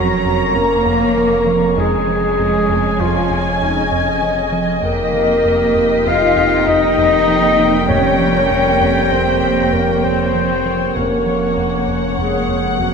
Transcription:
Already playing: F1 F2 F#3 C#4 F#4 A#4 C#5 F#5 A#5 C#6
0.25 F2
0.55 F2 A#3 C#4 A#4
0.86 F2
1.17 F3
1.47 F3
1.77 F2 G#3 C#4 D#4 G#4 C#5 D#5 G#5
2.08 F3
2.39 F2
2.60 A5
2.69 F2
3.00 F2 F3 F4
3.31 F2
3.61 F2 G#3 D#4
3.91 F2
4.22 F3
4.52 F3
4.83 F1 F2 G3 A#3 D#4 G4 A#4 G5 A#6 B6
5.14 F3
5.45 F2
5.75 F2
6.06 F2 F4 F5
6.36 F2
6.67 F2 D#4 D#5
6.98 F2
7.28 F3
7.59 F3
7.88 F2 A#3 C#4 C#5
8.20 F3
8.51 F2
8.81 F2
9.12 F2 C4 C5
9.42 F2
9.73 F2 A#3 A#4
10.04 F2 C4 C5
10.35 F3
10.66 F3
10.95 F1 F2 A#3 C#4 A#4 F#5
11.26 F3
11.57 F2
11.88 F2
12.18 F2 G#3 G#4
12.49 F2
12.79 F2 F#3 A#3 C#4 F#4

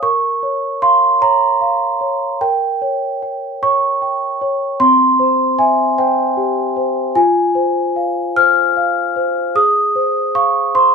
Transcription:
0.03 A#4 C#6
0.43 C#5
0.82 F5 C6
1.22 C#5 A#5
1.61 F5
2.01 C#5
2.41 A#4 G5
2.82 C#5
3.22 G5
3.63 C#5 C#6
4.02 G5
4.42 C#5
4.80 C4 C6
5.19 C5
5.59 E5 G#5
5.98 C5 G5
6.37 G4
6.76 C5
7.15 F4 G#5
7.55 C5
7.96 F5
8.36 C5 F6
8.77 F5
9.16 C5
9.55 G#4 D#6
9.95 C5
10.35 F5 C#6
10.75 C5 C6

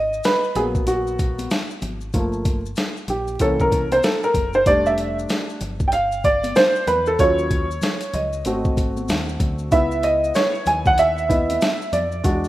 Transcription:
Already playing: G#1 D#5
0.13 maracas
0.24 B4, snare, closed hi-hat, maracas
0.44 maracas
0.55 A#1 F#3 A#3 B3 G#4, closed hi-hat, low conga, maracas
0.75 kick, maracas
0.87 F#4, closed hi-hat, maracas
1.07 maracas
1.19 kick, closed hi-hat, maracas
1.39 closed hi-hat, high conga, maracas
1.50 snare, closed hi-hat, maracas
1.71 maracas
1.82 G#1, closed hi-hat, high conga, low conga, maracas
2.01 maracas
2.13 G1 F3 A3 A#3, kick, closed hi-hat, maracas
2.33 maracas
2.45 kick, closed hi-hat, maracas
2.66 maracas
2.76 snare, closed hi-hat, maracas
2.97 maracas
3.08 A#1 G4, closed hi-hat, low conga, maracas
3.28 maracas
3.39 C2 E3 A#3 C#4 A4, kick, closed hi-hat, maracas
3.60 A#4, kick, maracas
3.72 kick, closed hi-hat, maracas
3.92 C5, closed hi-hat, high conga, maracas
4.03 A4, snare, closed hi-hat, maracas
4.23 A#4, maracas
4.34 F#1, kick, closed hi-hat, high conga, low conga, maracas
4.53 C5, maracas
4.66 F1 G3 A3 D4 D5, kick, closed hi-hat, maracas
4.86 E5, maracas
4.98 closed hi-hat, maracas
5.19 maracas
5.29 snare, closed hi-hat, maracas
5.50 maracas
5.61 G1, closed hi-hat, low conga, maracas
5.80 kick, maracas
5.88 G5
5.92 F5, closed hi-hat, maracas
6.12 maracas
6.24 D5, kick, closed hi-hat, maracas
6.44 closed hi-hat, high conga, maracas
6.56 C5, snare, closed hi-hat, maracas
6.76 maracas
6.87 E2 B4, closed hi-hat, high conga, low conga, maracas
7.06 A4, maracas
7.19 D#2 F#3 C#4 F4 C#5, kick, closed hi-hat, maracas
7.38 maracas
7.51 kick, closed hi-hat, maracas
7.71 maracas
7.82 snare, closed hi-hat, low conga, maracas
8.01 closed hi-hat, maracas
8.13 C#2 D#5, closed hi-hat, low conga, maracas
8.33 maracas
8.45 G#1 A3 C4 F#4, closed hi-hat, maracas
8.65 kick, maracas
8.77 kick, closed hi-hat, maracas
8.97 high conga, maracas
9.08 D#2, snare, closed hi-hat, maracas
9.29 maracas
9.40 D2, kick, closed hi-hat, high conga, low conga, maracas
9.59 maracas
9.71 C#2 B3 E4 E5, kick, closed hi-hat, maracas
9.91 maracas
10.03 D#5, closed hi-hat, maracas
10.24 maracas
10.34 C#5, snare, closed hi-hat, maracas
10.55 maracas
10.66 D#2 G#5, closed hi-hat, low conga, maracas
10.86 F#5, kick, maracas
10.98 E5, closed hi-hat, maracas
11.18 maracas
11.29 B3 E4 D#5, kick, closed hi-hat, maracas
11.50 closed hi-hat, high conga, maracas
11.61 snare, closed hi-hat, maracas
11.82 maracas
11.93 F2 D5, closed hi-hat, high conga, low conga, maracas
12.12 maracas
12.24 E2 G#3 D4 F#4, kick, closed hi-hat, maracas
12.44 maracas

